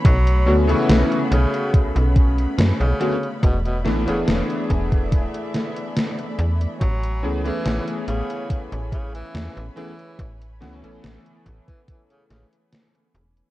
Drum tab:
HH |xx-xxxxxxxxxxxxx|xx-xxxxxxxxxxxxx|xx-xxxxxxxxxxxxx|xxxxxxxxxxxxxxxx|
SD |----o-------o---|--o-o-----o-o---|----o-------o---|--o-o-----o-o---|
BD |o-------o-o-----|o-----ooo-------|o-------o-o-----|o-----ooo-------|